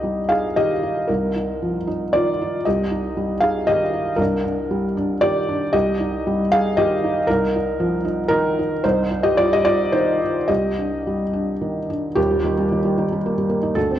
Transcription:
0.00 1.06 C2 medium
0.00 0.46 G3 medium
0.00 0.20 D#4 soft
0.00 0.26 G4 medium
0.00 0.30 D#5 medium
0.29 0.73 D#4 medium
0.29 0.54 G#4 medium
0.29 0.56 F5 medium
0.56 0.99 D#3 soft
0.56 1.05 G4 medium
0.56 1.09 D#5 medium
0.83 1.07 D#4 soft
1.08 2.62 C2 medium
1.08 1.34 D#4 medium
1.08 1.86 A#4 medium
1.36 1.77 D#4 soft
1.63 2.03 F3 soft
1.87 2.29 D#4 medium
2.13 2.56 D#3 medium
2.13 2.63 F4 medium
2.13 2.65 D5 loud
2.42 2.67 D#4 medium
2.66 4.16 C2 medium
2.66 3.39 G4 medium
2.66 3.43 D#5 medium
2.91 3.32 D#4 soft
3.17 3.58 G3 soft
3.41 3.83 D#4 medium
3.41 3.66 G#4 medium
3.41 3.67 F5 medium
3.67 4.09 D#3 medium
3.67 4.16 G4 medium
3.67 4.19 D#5 loud
3.94 4.19 D#4 medium
4.16 5.69 C2 medium
4.16 4.42 D4 medium
4.16 4.95 A#4 medium
4.44 4.85 D4 medium
4.71 5.12 G3 medium
4.97 5.38 D4 medium
5.21 5.64 D#3 medium
5.21 5.70 G4 medium
5.21 5.73 D5 loud
5.49 5.74 D4 medium
5.72 7.24 C2 medium
5.72 6.47 G4 medium
5.72 6.51 D#5 loud
6.00 6.41 D#4 medium
6.26 6.67 G3 medium
6.52 6.93 D#4 medium
6.52 6.76 G#4 medium
6.52 6.77 F5 loud
6.77 7.18 D#3 medium
6.77 7.25 G4 medium
6.77 7.28 D#5 loud
7.04 7.28 D#4 medium
7.27 8.80 C2 medium
7.27 7.54 D#4 medium
7.27 8.04 A#4 loud
7.56 7.95 D#4 medium
7.80 8.20 F3 medium
8.05 8.29 D#4 medium
8.28 8.73 D#3 medium
8.28 8.57 D#4 medium
8.28 8.82 A#4 loud
8.59 8.83 D#4 medium
8.84 10.46 C2 medium
8.84 9.10 D#4 medium
8.84 9.24 C5 loud
9.11 9.55 D#4 medium
9.23 9.37 G4 medium
9.23 9.37 D#5 loud
9.37 9.82 G3 medium
9.37 9.51 F4 medium
9.37 9.51 D5 loud
9.53 9.66 G4 medium
9.53 9.66 D#5 loud
9.65 9.92 D#4 medium
9.65 9.91 F4 medium
9.65 9.92 D5 loud
9.92 10.37 D#3 medium
9.92 10.20 D#4 medium
9.92 10.48 C5 loud
10.22 10.49 D#4 medium
10.48 12.13 C2 medium
10.48 11.86 G4 medium
10.48 11.89 D#5 medium
10.78 11.23 D4 soft
11.07 11.51 G3 soft
11.33 11.78 D4 medium
11.61 12.06 D#3 soft
11.90 12.17 D4 soft
12.16 13.72 D#1 medium
12.16 13.72 D#2 medium
12.16 13.75 G4 medium
12.31 12.52 G3 medium
12.44 12.65 D#3 medium
12.58 12.79 G3 medium
12.72 12.92 D#3 medium
12.85 13.05 G3 medium
12.98 13.18 D#3 medium
13.13 13.32 G3 medium
13.26 13.46 A#3 medium
13.38 13.58 G3 medium
13.50 13.71 A#3 medium
13.63 13.76 D#4 medium
13.75 13.99 D2 medium
13.75 13.99 A4 medium
13.91 13.99 C4 medium

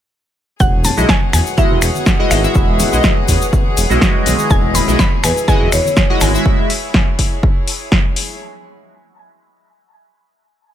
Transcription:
0.60 0.90 E1 loud
0.60 6.42 F#4 medium
0.60 6.42 G#4 medium
0.60 8.41 G#4 medium
0.60 6.42 B4 medium
0.60 0.83 F#5 loud
0.60 6.42 D#6 medium
0.60 kick loud
0.60 shaker soft
0.67 8.41 C#5 medium
0.84 1.07 A5 loud
0.84 open hi-hat loud
0.84 high conga medium
0.84 low conga loud
0.84 shaker medium
0.97 1.05 B1 medium
0.97 1.10 G#3 medium
0.97 1.10 E4 medium
0.97 1.10 F#4 medium
0.97 1.10 D#5 medium
0.97 shaker medium
1.09 4.78 F#5 medium
1.09 1.32 G#5 loud
1.09 kick loud
1.09 snare loud
1.09 shaker soft
1.21 high conga medium
1.33 1.41 E2 medium
1.33 1.58 G#5 loud
1.33 finger snap medium
1.33 open hi-hat loud
1.33 low conga medium
1.33 shaker medium
1.46 shaker medium
1.57 1.79 G#3 loud
1.57 1.79 E4 medium
1.57 1.79 F#4 medium
1.57 1.79 D#5 loud
1.57 2.30 E5 medium
1.57 kick loud
1.57 high conga loud
1.57 shaker soft
1.71 1.78 E1 medium
1.82 1.90 E1 medium
1.82 finger snap medium
1.82 open hi-hat loud
1.82 shaker medium
1.95 high conga medium
1.95 shaker soft
2.06 kick loud
2.06 snare loud
2.06 shaker soft
2.19 2.40 G#3 medium
2.19 2.40 E4 medium
2.19 2.40 F#4 medium
2.19 2.40 D#5 loud
2.31 2.46 G#1 loud
2.31 3.25 E5 medium
2.31 finger snap medium
2.31 open hi-hat loud
2.31 high conga medium
2.31 shaker medium
2.43 2.89 G#3 medium
2.43 2.89 E4 medium
2.43 2.90 F#4 medium
2.43 2.90 E5 medium
2.43 shaker medium
2.55 2.85 E1 loud
2.55 kick loud
2.55 shaker soft
2.80 open hi-hat loud
2.80 high conga loud
2.80 low conga medium
2.80 shaker loud
2.92 3.00 B1 medium
2.92 3.13 G#3 medium
2.92 3.13 E4 medium
2.92 3.14 F#4 medium
2.92 3.14 D#5 medium
2.92 shaker medium
3.04 kick loud
3.04 snare loud
3.04 shaker soft
3.17 high conga medium
3.28 3.36 E2 medium
3.28 kick medium
3.28 open hi-hat loud
3.28 low conga medium
3.28 shaker medium
3.42 shaker medium
3.53 kick loud
3.53 high conga medium
3.53 shaker soft
3.77 3.85 E1 medium
3.77 open hi-hat loud
3.77 shaker medium
3.89 3.97 B1 loud
3.89 4.84 G#3 medium
3.89 4.85 E4 medium
3.89 4.85 F#4 medium
3.89 4.85 D#5 medium
3.89 high conga medium
3.89 shaker soft
4.01 kick loud
4.01 snare loud
4.01 shaker soft
4.26 4.34 B1 medium
4.26 open hi-hat loud
4.26 high conga loud
4.26 shaker loud
4.39 shaker medium
4.50 4.80 E1 loud
4.50 4.76 G#5 loud
4.50 kick loud
4.50 shaker soft
4.64 8.41 E4 medium
4.74 4.98 B5 loud
4.74 open hi-hat loud
4.74 high conga medium
4.74 low conga loud
4.74 shaker medium
4.87 4.95 B1 medium
4.87 5.00 G#3 medium
4.87 5.00 E4 medium
4.87 5.00 F#4 medium
4.87 5.00 D#5 medium
4.87 shaker medium
4.99 5.24 B5 loud
4.99 kick loud
4.99 snare loud
4.99 shaker soft
5.12 high conga medium
5.24 5.32 E2 medium
5.24 5.38 B4 medium
5.24 5.47 G#5 loud
5.24 finger snap medium
5.24 open hi-hat loud
5.24 low conga medium
5.24 shaker medium
5.37 shaker medium
5.48 5.69 G#3 loud
5.48 5.69 E4 medium
5.48 5.69 F#4 medium
5.48 5.69 D#5 loud
5.48 6.17 G#5 loud
5.48 kick loud
5.48 high conga loud
5.48 shaker soft
5.61 5.68 E1 medium
5.72 5.80 E1 medium
5.72 5.81 C#5 medium
5.72 finger snap medium
5.72 open hi-hat loud
5.72 shaker medium
5.85 5.93 C#5 medium
5.85 high conga medium
5.85 shaker medium
5.97 kick loud
5.97 snare loud
5.97 shaker soft
6.09 6.30 G#3 medium
6.09 6.30 E4 medium
6.09 6.30 F#4 medium
6.09 6.30 D#5 loud
6.21 6.37 G#1 loud
6.21 6.44 G#5 medium
6.21 finger snap medium
6.21 open hi-hat loud
6.21 high conga loud
6.21 shaker loud
6.34 6.70 G#3 medium
6.34 6.70 E4 medium
6.34 6.70 F#4 medium
6.34 6.70 E5 medium
6.34 shaker medium
6.46 kick loud
6.70 open hi-hat loud
6.94 kick loud
6.94 snare loud
7.19 kick medium
7.19 open hi-hat loud
7.43 kick loud
7.68 open hi-hat loud
7.92 kick loud
7.92 snare loud
8.16 open hi-hat loud

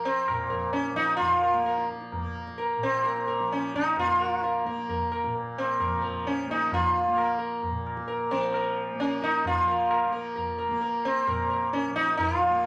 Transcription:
0.00 0.29 A#2 medium
0.00 0.92 F3 medium
0.00 1.53 A#3 medium
0.05 0.70 C4 medium
0.28 2.76 A#2 medium
0.28 tabla na medium
0.28 tabla ge medium
0.50 0.72 A#4 soft
0.50 tabla ge soft
0.73 0.96 C#4 medium
0.73 tabla te medium
0.85 tabla te soft
0.92 3.40 F3 medium
0.96 1.16 D#4 medium
0.96 tabla ke medium
1.08 tabla te medium
1.17 1.84 F4 loud
1.17 tabla tin medium
1.17 tabla ge medium
1.43 1.65 A#4 soft
1.53 2.15 A#3 medium
1.66 1.88 A#4 soft
1.66 tabla te medium
1.78 tabla te medium
1.89 tabla ke medium
2.01 tabla te soft
2.12 4.00 A#3 medium
2.12 tabla tin medium
2.12 tabla ge medium
2.35 tabla na soft
2.47 tabla ke medium
2.58 2.80 A#4 soft
2.58 tabla tin medium
2.77 5.25 A#2 medium
2.83 3.52 C4 medium
3.04 3.26 A#4 soft
3.04 tabla te medium
3.17 tabla te medium
3.27 3.49 A#4 soft
3.27 tabla ke medium
3.40 5.86 F3 medium
3.40 tabla te medium
3.51 3.75 C#4 medium
3.51 tabla te medium
3.63 tabla te soft
3.74 3.98 D#4 medium
3.74 tabla ke medium
3.85 tabla te medium
3.97 4.64 A#3 soft
3.97 4.63 F4 medium
3.97 tabla tin medium
3.97 tabla ge medium
4.21 4.42 A#4 soft
4.42 4.65 A#4 soft
4.42 tabla te medium
4.54 tabla te medium
4.64 6.46 A#3 medium
4.64 4.87 A#4 soft
4.64 tabla ke soft
4.78 tabla te soft
4.89 5.10 A#4 soft
4.89 tabla tin medium
4.89 tabla ge medium
5.12 5.33 A#4 soft
5.12 tabla na medium
5.24 7.69 A#2 medium
5.24 tabla ke soft
5.35 tabla tin medium
5.58 6.26 C4 medium
5.58 tabla na medium
5.80 6.01 A#4 soft
5.80 tabla na medium
5.80 tabla ge medium
5.87 8.31 F3 medium
6.02 6.24 A#4 soft
6.02 tabla ge soft
6.25 6.50 C#4 medium
6.25 tabla te medium
6.38 tabla te soft
6.46 7.08 A#3 medium
6.46 tabla ke medium
6.51 6.71 D#4 medium
6.61 tabla te medium
6.72 7.37 F4 medium
6.72 tabla tin medium
6.72 tabla ge medium
7.08 8.91 A#3 medium
7.16 7.38 A#4 soft
7.16 tabla na medium
7.39 7.61 A#4 soft
7.63 tabla tin medium
7.63 tabla ge medium
7.70 11.27 A#2 soft
7.87 tabla na medium
7.97 tabla ke medium
8.08 8.30 A#4 soft
8.08 tabla tin medium
8.31 9.45 F3 medium
8.31 8.99 C4 medium
8.31 8.53 A#4 soft
8.54 8.76 A#4 soft
8.54 tabla na medium
8.91 10.06 A#3 medium
9.00 9.24 C#4 medium
9.00 9.21 A#4 soft
9.00 tabla te medium
9.11 tabla te soft
9.22 9.47 D#4 medium
9.22 9.44 A#4 soft
9.22 tabla ke medium
9.34 tabla te medium
9.45 11.88 F3 medium
9.45 10.11 F4 medium
9.45 tabla tin medium
9.45 tabla ge medium
9.68 9.89 A#4 soft
9.90 10.11 A#4 soft
9.90 tabla na medium
10.06 10.68 A#3 medium
10.12 10.34 A#4 soft
10.36 10.57 A#4 soft
10.36 tabla tin medium
10.36 tabla ge medium
10.58 10.80 A#4 soft
10.58 tabla na medium
10.68 12.49 A#3 medium
10.68 tabla ke medium
10.81 11.03 A#4 soft
10.81 tabla tin medium
11.05 11.69 C4 medium
11.27 12.66 A#2 soft
11.27 11.49 A#4 soft
11.27 tabla na medium
11.27 tabla ge medium
11.50 11.71 A#4 soft
11.50 tabla te medium
11.73 11.95 C#4 medium
11.73 tabla te medium
11.84 12.66 F3 medium
11.84 tabla te medium
11.96 12.17 D#4 medium
11.96 tabla ke medium
12.07 tabla te medium
12.17 12.36 D#4 medium
12.17 tabla tin medium
12.17 tabla ge medium
12.36 12.66 F4 medium
12.50 12.66 A#3 medium

